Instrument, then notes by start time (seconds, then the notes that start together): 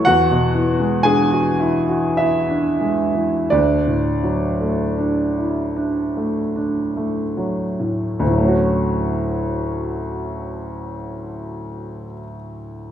grand piano
0.05 E2 F#4 F#5
0.31 B2
0.55 E3
0.80 G#3
1.03 D4 G#4 G#5
1.32 F#4
1.60 E4
1.89 F#4
2.17 E4 E5
2.49 D4
2.81 G#3
3.14 E3
3.50 D2 D4 D5
3.87 A2
4.23 F#3
4.61 A3
4.98 D4
5.38 E4
5.76 D4
6.17 A3
6.56 D4
6.97 A3
7.37 F#3
7.80 A2
8.19 D2
8.25 A2
8.31 F#3
8.38 A3
8.43 C#4
8.48 F#4